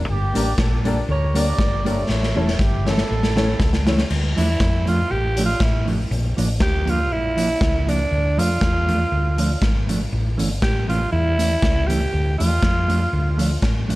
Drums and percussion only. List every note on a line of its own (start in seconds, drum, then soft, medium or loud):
0.35 closed hi-hat loud
0.58 kick loud
0.58 snare loud
0.85 closed hi-hat medium
1.35 closed hi-hat loud
1.58 kick loud
1.58 snare loud
1.86 closed hi-hat medium
2.09 snare medium
2.23 snare medium
2.48 snare medium
2.59 kick loud
2.59 snare medium
2.87 snare medium
2.98 snare medium
3.23 snare medium
3.37 snare medium
3.60 kick loud
3.60 snare loud
3.73 snare medium
3.87 snare loud
3.98 snare medium
4.10 crash medium
4.38 closed hi-hat medium
4.60 kick loud
4.60 snare loud
4.87 closed hi-hat medium
5.37 closed hi-hat medium
5.60 kick loud
5.60 snare loud
5.87 open hi-hat medium
6.11 hi-hat pedal medium
6.38 closed hi-hat loud
6.60 kick loud
6.60 snare loud
6.87 closed hi-hat medium
7.38 closed hi-hat medium
7.61 kick loud
7.61 snare loud
7.89 closed hi-hat loud
8.39 closed hi-hat medium
8.61 kick loud
8.61 snare loud
8.89 closed hi-hat medium
9.38 closed hi-hat loud
9.62 kick loud
9.62 snare loud
9.89 closed hi-hat loud
10.39 closed hi-hat medium
10.62 kick loud
10.62 snare loud
10.89 closed hi-hat medium
11.39 closed hi-hat medium
11.62 kick loud
11.62 snare loud
11.90 closed hi-hat loud
12.40 closed hi-hat medium
12.63 kick loud
12.63 snare loud
12.90 closed hi-hat medium
13.39 closed hi-hat medium
13.62 kick loud
13.62 snare loud
13.90 closed hi-hat loud